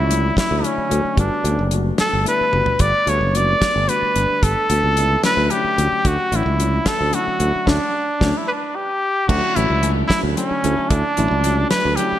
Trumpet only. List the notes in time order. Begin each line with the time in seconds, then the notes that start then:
Already playing: E4
0.38 E4
0.65 C#4
1.20 D4
2.00 A4
2.28 B4
2.81 D5
3.09 C#5
3.36 D5
3.89 B4
4.43 A4
5.25 B4
5.51 G4
6.07 F#4
6.36 E4
6.87 A4
7.14 F#4
7.69 D4
8.37 E4
8.48 D4 B4
8.76 G4
9.28 F#4
9.56 E4
10.07 E4
10.37 C#4
10.89 D4
11.71 B4
11.96 G4